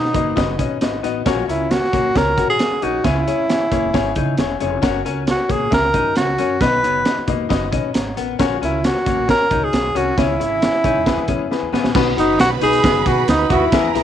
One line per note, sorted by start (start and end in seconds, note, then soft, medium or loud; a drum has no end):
0.00 0.10 B2 medium
0.00 0.11 B2 medium
0.00 0.78 D#4 medium
0.05 snare soft
0.13 0.32 F#1 medium
0.13 0.32 A#3 medium
0.13 0.30 D#4 medium
0.13 0.30 F#4 medium
0.13 0.31 B4 medium
0.13 0.31 D#5 medium
0.13 kick medium
0.13 closed hi-hat medium
0.36 0.55 F#1 medium
0.36 0.53 D#4 loud
0.36 0.53 F#4 medium
0.36 0.53 B4 loud
0.36 0.53 D#5 loud
0.36 kick medium
0.36 snare loud
0.36 closed hi-hat medium
0.58 0.77 B2 medium
0.58 0.77 C#4 medium
0.58 0.75 D#4 medium
0.58 0.75 F#4 medium
0.58 0.75 B4 medium
0.58 0.76 D#5 medium
0.58 kick medium
0.58 closed hi-hat medium
0.81 0.99 G#1 medium
0.81 0.98 D#4 medium
0.81 0.98 F#4 medium
0.81 0.98 B4 medium
0.81 0.98 D#5 medium
0.81 snare medium
0.81 closed hi-hat medium
1.03 1.22 A1 medium
1.03 1.22 B3 medium
1.03 1.20 D#4 medium
1.03 1.20 F#4 medium
1.03 1.20 B4 medium
1.03 1.20 D#5 medium
1.03 closed hi-hat medium
1.26 1.44 A#1 loud
1.26 1.89 A#2 medium
1.26 1.42 C#4 loud
1.26 1.44 F#4 medium
1.26 1.42 F#4 medium
1.26 1.43 A#4 medium
1.26 1.43 C#5 loud
1.26 kick loud
1.26 snare loud
1.26 closed hi-hat medium
1.48 1.75 C#2 medium
1.48 1.66 C#4 medium
1.48 1.65 C#4 medium
1.48 1.72 E4 medium
1.48 1.65 F#4 medium
1.48 1.65 A#4 medium
1.48 1.65 C#5 medium
1.48 closed hi-hat medium
1.70 1.87 C#4 medium
1.70 1.87 F#4 medium
1.70 2.19 F#4 medium
1.70 1.87 A#4 medium
1.70 1.87 C#5 medium
1.70 snare loud
1.70 closed hi-hat medium
1.84 snare soft
1.92 2.02 A#1 medium
1.92 2.11 A#3 medium
1.92 2.09 C#4 medium
1.92 2.09 F#4 medium
1.92 2.09 A#4 medium
1.92 2.10 C#5 medium
1.92 kick medium
1.92 closed hi-hat medium
2.04 2.13 A#1 medium
2.14 2.34 C#2 medium
2.14 2.31 C#4 medium
2.14 2.31 F#4 medium
2.14 2.32 A#4 medium
2.14 2.49 A#4 loud
2.14 2.32 C#5 loud
2.14 kick medium
2.14 snare loud
2.14 closed hi-hat medium
2.37 2.54 C#4 medium
2.37 2.54 F#4 medium
2.37 2.56 F#4 medium
2.37 2.54 A#4 medium
2.37 2.54 C#5 medium
2.37 kick medium
2.37 closed hi-hat medium
2.50 2.85 G#4 medium
2.59 2.76 C#4 medium
2.59 2.76 F#4 medium
2.59 2.76 A#4 medium
2.59 2.77 C#5 medium
2.59 snare loud
2.59 closed hi-hat medium
2.71 muted upright bass stroke soft
2.82 3.00 A#1 medium
2.82 2.98 C#4 medium
2.82 3.01 D#4 medium
2.82 2.99 F#4 medium
2.82 3.07 F#4 medium
2.82 2.99 A#4 medium
2.82 2.99 C#5 medium
2.82 closed hi-hat medium
3.04 3.22 C#2 loud
3.04 3.67 C#3 medium
3.04 3.20 C#4 medium
3.04 3.23 C#4 medium
3.04 3.21 E4 medium
3.04 4.61 E4 medium
3.04 3.21 G#4 medium
3.04 3.21 C#5 medium
3.04 kick medium
3.04 snare medium
3.04 closed hi-hat medium
3.27 3.43 C#4 medium
3.27 3.45 C#4 medium
3.27 3.43 E4 medium
3.27 3.44 G#4 medium
3.27 3.44 C#5 medium
3.27 closed hi-hat medium
3.48 3.65 C#4 medium
3.48 3.65 E4 medium
3.48 3.66 G#4 medium
3.48 3.66 C#5 medium
3.48 snare loud
3.48 closed hi-hat medium
3.71 3.81 E1 medium
3.71 3.90 A#3 medium
3.71 3.88 C#4 medium
3.71 3.88 E4 medium
3.71 3.88 G#4 medium
3.71 3.88 C#5 medium
3.71 kick medium
3.71 closed hi-hat medium
3.83 3.92 E1 medium
3.93 4.12 G#1 medium
3.93 4.10 C#4 loud
3.93 4.10 E4 medium
3.93 4.10 G#4 loud
3.93 4.10 C#5 loud
3.93 kick medium
3.93 snare loud
3.93 closed hi-hat medium
4.15 4.34 C#3 medium
4.15 4.33 C#4 medium
4.15 4.34 D#4 medium
4.15 4.33 E4 medium
4.15 4.33 G#4 medium
4.15 4.33 C#5 medium
4.15 kick medium
4.15 closed hi-hat medium
4.37 4.56 E1 medium
4.37 4.55 C#4 medium
4.37 4.55 E4 medium
4.37 4.55 G#4 medium
4.37 4.55 C#5 medium
4.37 snare medium
4.37 closed hi-hat medium
4.60 4.78 F1 medium
4.60 4.77 C#4 medium
4.60 4.79 C#4 medium
4.60 4.77 E4 medium
4.60 4.77 G#4 medium
4.60 4.77 C#5 medium
4.60 closed hi-hat medium
4.82 5.01 F#1 medium
4.82 4.99 C#4 loud
4.82 4.99 F#4 loud
4.82 5.01 F#4 medium
4.82 4.99 A#4 loud
4.82 4.99 C#5 loud
4.82 kick loud
4.82 snare loud
4.82 closed hi-hat medium
5.05 5.32 C#2 medium
5.05 5.21 C#4 medium
5.05 5.23 C#4 medium
5.05 5.21 F#4 medium
5.05 5.22 A#4 medium
5.05 5.22 C#5 medium
5.05 closed hi-hat medium
5.26 5.43 C#4 medium
5.26 5.43 F#4 medium
5.26 5.44 A#4 medium
5.26 5.44 C#5 medium
5.26 snare loud
5.26 closed hi-hat medium
5.30 5.53 F#4 medium
5.48 5.59 A#1 medium
5.48 5.68 A#3 medium
5.48 5.65 C#4 medium
5.48 5.65 F#4 medium
5.48 5.73 G#4 medium
5.48 5.65 A#4 medium
5.48 5.66 C#5 medium
5.48 kick medium
5.48 closed hi-hat medium
5.60 5.70 A#1 medium
5.70 5.90 C#2 medium
5.70 5.87 C#4 medium
5.70 5.87 F#4 medium
5.70 5.88 A#4 medium
5.70 6.14 A#4 loud
5.70 5.88 E5 medium
5.70 kick medium
5.70 snare loud
5.70 closed hi-hat medium
5.93 6.12 F#2 medium
5.93 6.10 C#4 medium
5.93 6.12 D#4 medium
5.93 6.10 F#4 medium
5.93 6.10 A#4 medium
5.93 6.10 D#5 medium
5.93 kick medium
5.93 closed hi-hat medium
6.16 6.34 C#2 medium
6.16 6.33 C#4 medium
6.16 6.33 F#4 medium
6.16 6.63 F#4 medium
6.16 6.33 A#4 medium
6.16 6.33 C#5 medium
6.16 snare medium
6.16 closed hi-hat medium
6.38 6.57 F#2 medium
6.38 6.55 C#4 medium
6.38 6.57 C#4 medium
6.38 6.55 F#4 medium
6.38 6.55 A#4 medium
6.38 6.55 C#5 medium
6.38 closed hi-hat medium
6.61 6.79 B1 loud
6.61 7.24 B2 medium
6.61 6.79 B3 medium
6.61 6.77 D#4 medium
6.61 6.77 F#4 medium
6.61 7.28 B4 medium
6.61 6.78 B4 medium
6.61 6.78 D#5 loud
6.61 kick medium
6.61 snare medium
6.61 closed hi-hat medium
6.83 7.01 F#1 medium
6.83 7.01 B3 medium
6.83 6.99 D#4 medium
6.83 7.00 F#4 medium
6.83 7.00 B4 medium
6.83 7.00 C#5 medium
6.83 closed hi-hat medium
7.05 7.22 D#4 medium
7.05 7.22 F#4 medium
7.05 7.22 B4 medium
7.05 7.22 D#5 medium
7.05 snare loud
7.05 closed hi-hat medium
7.17 muted upright bass stroke soft
7.27 7.46 E1 medium
7.27 7.46 A#3 medium
7.27 7.44 D#4 medium
7.27 7.44 F#4 medium
7.27 7.44 B4 medium
7.27 7.44 D#5 medium
7.27 kick medium
7.27 closed hi-hat medium
7.49 7.68 F#1 medium
7.49 7.66 D#4 loud
7.49 7.66 F#4 loud
7.49 7.66 B4 medium
7.49 7.66 D#5 loud
7.49 kick medium
7.49 snare loud
7.49 closed hi-hat medium
7.71 7.90 B2 medium
7.71 7.90 C#4 medium
7.71 7.88 D#4 medium
7.71 7.88 F#4 medium
7.71 7.88 B4 medium
7.71 7.89 D#5 medium
7.71 kick medium
7.71 closed hi-hat medium
7.94 8.12 G#1 medium
7.94 8.16 C#5 soft
7.94 8.15 A#5 medium
7.94 snare medium
7.94 closed hi-hat medium
8.17 8.35 A1 medium
8.17 8.35 B3 medium
8.17 8.38 A#4 medium
8.17 8.59 F#5 medium
8.17 closed hi-hat medium
8.39 8.57 A#1 medium
8.39 9.02 A#2 medium
8.39 8.55 C#4 loud
8.39 8.55 F#4 medium
8.39 8.58 F#4 medium
8.39 8.55 A#4 loud
8.39 8.56 C#5 loud
8.39 kick medium
8.39 snare medium
8.39 closed hi-hat medium
8.61 8.88 C#2 medium
8.61 8.78 C#4 medium
8.61 8.80 C#4 medium
8.61 8.87 E4 medium
8.61 8.78 F#4 medium
8.61 8.78 A#4 medium
8.61 8.78 C#5 medium
8.61 closed hi-hat medium
8.84 9.00 C#4 medium
8.84 9.00 F#4 medium
8.84 9.29 F#4 medium
8.84 9.00 A#4 medium
8.84 9.00 C#5 medium
8.84 snare loud
8.84 closed hi-hat medium
8.97 snare soft
9.05 9.15 A#1 medium
9.05 9.24 A#3 medium
9.05 9.22 C#4 medium
9.05 9.22 F#4 medium
9.05 9.22 A#4 medium
9.05 9.22 C#5 medium
9.05 kick medium
9.05 closed hi-hat medium
9.17 9.26 A#1 medium
9.27 9.44 C#4 medium
9.27 9.44 F#4 medium
9.27 9.44 A#4 medium
9.27 9.66 A#4 loud
9.27 9.45 C#5 loud
9.27 kick medium
9.27 snare loud
9.27 closed hi-hat medium
9.40 muted upright bass stroke soft
9.49 9.69 C#2 medium
9.49 9.66 C#4 medium
9.49 9.69 D#4 medium
9.49 9.66 F#4 medium
9.49 9.66 A#4 medium
9.49 9.67 C#5 medium
9.49 kick medium
9.49 closed hi-hat medium
9.64 9.99 G#4 medium
9.72 9.91 B1 medium
9.72 9.89 C#4 medium
9.72 9.89 F#4 medium
9.72 9.89 A#4 medium
9.72 9.89 C#5 medium
9.72 snare medium
9.72 closed hi-hat medium
9.94 10.13 C2 medium
9.94 10.11 C#4 medium
9.94 10.13 C#4 medium
9.94 10.11 F#4 medium
9.94 10.18 F#4 medium
9.94 10.11 A#4 medium
9.94 10.11 C#5 medium
9.94 closed hi-hat medium
10.17 10.35 C#2 medium
10.17 10.80 C#3 medium
10.17 10.33 C#4 medium
10.17 10.36 C#4 medium
10.17 10.33 E4 medium
10.17 11.69 E4 medium
10.17 10.34 G#4 medium
10.17 10.34 C#5 medium
10.17 kick loud
10.17 snare medium
10.17 closed hi-hat medium
10.39 10.66 G#1 medium
10.39 10.55 C#4 medium
10.39 10.55 E4 medium
10.39 10.58 E4 medium
10.39 10.56 G#4 medium
10.39 10.56 C#5 medium
10.39 closed hi-hat medium
10.62 10.78 C#4 medium
10.62 10.78 E4 medium
10.62 10.78 G#4 medium
10.62 10.78 C#5 medium
10.62 snare loud
10.62 closed hi-hat medium
10.75 snare soft
10.84 10.93 E1 medium
10.84 11.00 C#4 medium
10.84 11.02 D#4 medium
10.84 11.00 E4 medium
10.84 11.00 G#4 medium
10.84 11.00 C#5 medium
10.84 kick medium
10.84 closed hi-hat medium
10.95 11.04 E1 medium
11.06 11.69 E3 medium
11.06 11.22 B3 loud
11.06 11.22 E4 medium
11.06 11.22 G#4 loud
11.06 11.23 B4 loud
11.06 kick medium
11.06 snare loud
11.06 closed hi-hat medium
11.17 11.26 E3 medium
11.28 11.37 E2 medium
11.28 11.44 B3 medium
11.28 11.46 C#4 medium
11.28 11.44 E4 medium
11.28 11.45 G#4 medium
11.28 11.45 B4 medium
11.28 kick medium
11.28 closed hi-hat medium
11.39 11.48 F#2 medium
11.51 11.67 B3 medium
11.51 11.67 E4 medium
11.51 11.67 G#4 medium
11.51 11.67 B4 medium
11.51 snare medium
11.62 11.70 E2 medium
11.72 11.81 A1 medium
11.72 11.89 B3 medium
11.72 11.91 B3 medium
11.72 11.89 E4 medium
11.72 11.89 G#4 medium
11.72 11.89 B4 medium
11.72 snare medium
11.84 11.93 A#1 medium
11.84 snare medium
11.94 12.13 B1 loud
11.94 12.58 B2 medium
11.94 12.11 B3 loud
11.94 12.13 B3 medium
11.94 12.11 D#4 loud
11.94 12.11 F#4 loud
11.94 13.68 B4 medium
11.94 12.11 B4 loud
11.94 13.68 B5 medium
11.94 kick loud
11.94 snare loud
11.94 crash medium
12.16 12.35 F#1 medium
12.16 12.33 B3 medium
12.16 12.33 D#4 medium
12.16 12.39 D#4 medium
12.16 12.33 F#4 medium
12.16 12.35 F#4 medium
12.16 12.33 B4 medium
12.16 closed hi-hat medium
12.39 12.57 B1 loud
12.39 12.55 B3 medium
12.39 12.55 D#4 medium
12.39 12.55 F#4 medium
12.39 12.50 F#4 loud
12.39 12.56 B4 medium
12.39 snare loud
12.39 closed hi-hat medium
12.61 12.79 B1 medium
12.61 12.78 B3 medium
12.61 12.79 D#4 medium
12.61 12.78 D#4 medium
12.61 12.78 F#4 medium
12.61 13.09 G#4 loud
12.61 12.78 B4 medium
12.61 closed hi-hat medium
12.73 closed hi-hat soft
12.84 13.01 F#1 medium
12.84 13.00 B3 loud
12.84 13.00 D#4 medium
12.84 13.00 F#4 medium
12.84 13.00 B4 loud
12.84 kick medium
12.84 snare loud
12.84 closed hi-hat medium
13.06 13.24 B2 loud
13.06 13.22 B3 medium
13.06 13.22 D#4 medium
13.06 13.22 F#4 medium
13.06 13.29 F#4 medium
13.06 13.24 G#4 medium
13.06 13.23 B4 medium
13.06 kick loud
13.06 closed hi-hat medium
13.28 13.46 D2 loud
13.28 13.37 D#3 medium
13.28 13.37 B3 medium
13.28 13.44 B3 medium
13.28 13.45 D#4 medium
13.28 13.54 D#4 medium
13.28 13.37 F#4 medium
13.28 13.45 F#4 medium
13.28 13.45 B4 medium
13.28 snare loud
13.28 closed hi-hat loud
13.49 13.68 D#2 loud
13.49 13.64 D#3 medium
13.49 13.64 B3 medium
13.49 13.66 B3 medium
13.49 13.67 D#4 medium
13.49 13.95 E4 medium
13.49 13.64 F#4 loud
13.49 13.68 F#4 medium
13.49 13.67 F#4 medium
13.49 13.67 B4 medium
13.49 kick loud
13.49 closed hi-hat medium
13.72 13.90 E2 medium
13.72 14.03 E3 medium
13.72 13.89 B3 loud
13.72 13.90 E4 medium
13.72 13.89 E4 medium
13.72 13.89 G#4 medium
13.72 14.03 A#4 medium
13.72 13.89 B4 loud
13.72 14.03 A#5 loud
13.72 kick loud
13.72 snare loud
13.72 closed hi-hat medium
13.94 14.03 B1 medium
13.94 14.03 B3 medium
13.94 14.03 E4 medium
13.94 14.03 G#4 medium
13.94 14.03 B4 medium
13.94 closed hi-hat medium